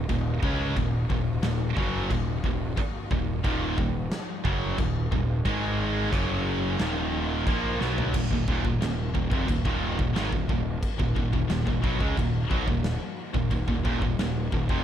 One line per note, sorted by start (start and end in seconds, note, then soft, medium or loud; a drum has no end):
0.00 5.41 D#3 medium
0.00 5.41 A#3 medium
0.00 5.41 F4 medium
0.00 5.41 F#4 medium
0.09 0.41 D#1 medium
0.09 0.36 D#2 medium
0.09 0.36 A#2 medium
0.09 kick medium
0.09 china medium
0.42 0.74 C#2 loud
0.42 0.75 C#3 loud
0.42 0.76 G#3 loud
0.42 0.76 C#4 loud
0.42 kick loud
0.76 1.08 D#1 medium
0.76 1.03 D#2 medium
0.76 1.03 A#2 medium
0.76 kick medium
0.76 china medium
1.10 1.41 D#1 medium
1.10 1.37 D#2 medium
1.10 1.37 A#2 medium
1.10 kick medium
1.43 1.74 D#1 medium
1.43 1.70 D#2 medium
1.43 1.70 A#2 medium
1.43 snare loud
1.43 china medium
1.76 2.08 F#1 loud
1.76 2.09 F#2 medium
1.76 2.09 C#3 loud
1.76 2.09 F#3 loud
1.76 kick loud
2.10 2.42 D#1 medium
2.10 2.37 D#2 medium
2.10 2.37 A#2 medium
2.10 kick medium
2.10 china medium
2.44 2.75 D#1 medium
2.44 2.71 D#2 medium
2.44 2.71 A#2 medium
2.44 kick medium
2.77 muted distorted electric guitar stroke medium
2.77 muted picked electric bass stroke soft
2.77 muted overdriven electric guitar stroke medium
2.77 kick loud
2.77 china medium
3.11 3.42 D#1 medium
3.11 3.38 D#2 medium
3.11 3.38 A#2 medium
3.11 kick loud
3.44 3.76 D#1 loud
3.44 3.77 D#2 medium
3.44 3.77 A#2 loud
3.44 3.77 D#3 loud
3.44 kick loud
3.44 china medium
3.78 4.09 D#1 medium
3.78 4.05 D#2 medium
3.78 4.05 A#2 medium
3.78 kick loud
4.11 snare loud
4.11 china medium
4.45 4.76 F#1 loud
4.45 4.78 F#2 medium
4.45 4.78 C#3 loud
4.45 4.78 F#3 loud
4.45 kick loud
4.78 5.10 D#1 medium
4.78 5.05 D#2 medium
4.78 5.05 A#2 medium
4.78 kick loud
4.78 china medium
5.11 5.43 D#1 medium
5.11 5.39 D#2 medium
5.11 5.39 A#2 medium
5.11 kick medium
5.43 6.08 G#1 loud
5.43 6.11 G#2 loud
5.43 6.12 D#3 loud
5.43 6.10 G#3 medium
5.43 6.12 G#3 loud
5.43 6.10 D#4 medium
5.43 6.77 G#4 medium
5.43 kick loud
5.43 china medium
6.11 6.75 F#1 loud
6.11 6.78 F#2 medium
6.11 6.78 C#3 loud
6.11 6.78 F#3 medium
6.11 6.79 F#3 loud
6.11 6.78 C#4 medium
6.11 6.78 F#5 medium
6.11 kick loud
6.11 china medium
6.78 7.43 D#1 medium
6.78 7.45 D#2 medium
6.78 7.45 A#2 medium
6.78 8.12 D#3 medium
6.78 7.46 D#3 medium
6.78 8.11 D#4 loud
6.78 8.12 F4 medium
6.78 8.12 A#4 medium
6.78 snare loud
6.78 china medium
7.46 7.78 A#1 loud
7.46 7.79 A#2 loud
7.46 7.79 F3 loud
7.46 7.79 A#3 loud
7.46 kick loud
7.46 china medium
7.80 8.12 B1 medium
7.80 8.12 B2 medium
7.80 8.12 F#3 loud
7.80 8.13 B3 loud
7.80 snare medium
7.98 floor tom loud
8.14 8.29 D#1 medium
8.14 8.29 D#2 medium
8.14 8.30 A#2 medium
8.14 14.84 D#3 medium
8.14 14.84 A#3 medium
8.14 14.84 F4 medium
8.14 14.84 F#4 loud
8.14 kick medium
8.14 crash loud
8.14 crash medium
8.31 8.46 D#1 medium
8.31 8.47 D#2 medium
8.31 8.48 A#2 medium
8.31 kick loud
8.48 8.63 D#1 medium
8.48 8.64 D#2 medium
8.48 8.64 A#2 loud
8.48 kick loud
8.65 8.80 D#1 medium
8.65 8.79 D#2 medium
8.65 8.80 A#2 medium
8.65 kick loud
8.81 9.13 D#1 medium
8.81 9.07 D#2 medium
8.81 9.07 A#2 medium
8.81 snare loud
8.81 crash medium
9.14 9.30 D#1 medium
9.14 9.30 D#2 medium
9.14 9.30 A#2 medium
9.14 kick medium
9.30 9.47 F1 loud
9.30 9.46 F2 medium
9.30 9.47 C3 loud
9.30 kick loud
9.48 9.64 D#1 medium
9.48 9.64 D#2 medium
9.48 9.64 A#2 medium
9.48 kick loud
9.48 crash medium
9.65 9.96 D#1 loud
9.65 9.96 D#2 medium
9.65 9.96 A#2 medium
9.65 9.98 D#3 loud
9.65 kick loud
9.97 10.14 D#1 medium
9.97 10.14 D#2 medium
9.97 10.13 A#2 medium
9.97 kick loud
10.14 10.31 G#1 loud
10.14 10.30 G#2 loud
10.14 10.30 D#3 loud
10.14 snare loud
10.14 crash medium
10.30 10.48 D#1 medium
10.30 10.48 D#2 medium
10.30 10.48 A#2 medium
10.30 kick medium
10.34 10.50 A#2 medium
10.49 10.80 D#1 medium
10.49 10.76 D#2 medium
10.49 10.76 A#2 medium
10.49 kick medium
10.83 kick medium
10.83 crash medium
10.98 11.15 D#1 medium
10.98 11.14 D#2 medium
10.98 11.14 A#2 medium
10.98 kick loud
11.15 11.32 D#1 medium
11.15 11.31 D#2 medium
11.15 11.32 A#2 medium
11.15 kick medium
11.32 11.48 D#1 medium
11.32 11.47 D#2 medium
11.32 11.47 A#2 medium
11.32 kick medium
11.48 11.65 D#1 medium
11.48 11.64 D#2 medium
11.48 11.65 A#2 medium
11.48 snare loud
11.48 crash medium
11.65 11.82 D#1 medium
11.65 11.83 D#2 medium
11.65 11.82 A#2 medium
11.65 kick medium
11.82 11.99 B1 loud
11.82 11.98 B2 loud
11.82 11.98 F#3 loud
11.82 kick loud
12.00 12.16 C#2 loud
12.00 12.15 C#3 loud
12.00 12.16 G#3 loud
12.00 kick loud
12.16 12.48 D#1 medium
12.16 12.43 D#2 medium
12.16 12.43 A#2 medium
12.16 kick medium
12.16 crash medium
12.50 12.66 B1 loud
12.50 12.66 B2 loud
12.50 12.66 F#3 loud
12.50 kick loud
12.65 12.99 D#1 medium
12.65 12.93 D#2 medium
12.65 12.93 A#2 medium
12.65 kick loud
12.84 snare loud
12.84 crash medium
13.34 13.50 D#1 medium
13.34 13.49 D#2 medium
13.34 13.49 A#2 medium
13.34 kick loud
13.50 13.67 D#1 medium
13.50 13.66 D#2 medium
13.50 13.67 A#2 medium
13.50 kick medium
13.50 crash medium
13.67 13.83 D#1 medium
13.67 13.83 D#2 medium
13.67 13.83 A#2 medium
13.67 kick medium
13.84 14.00 D#1 medium
13.84 14.00 D#2 medium
13.84 14.00 A#2 loud
13.84 kick loud
14.01 14.17 D#1 medium
14.01 14.18 D#2 medium
14.01 14.18 A#2 medium
14.01 kick medium
14.19 14.50 D#1 medium
14.19 14.46 D#2 medium
14.19 14.46 A#2 medium
14.19 snare loud
14.19 crash medium
14.52 14.68 D#1 medium
14.52 14.69 D#2 medium
14.52 14.69 A#2 medium
14.52 kick loud
14.69 14.84 F1 medium
14.69 14.84 F2 loud
14.69 14.84 C3 loud
14.69 kick loud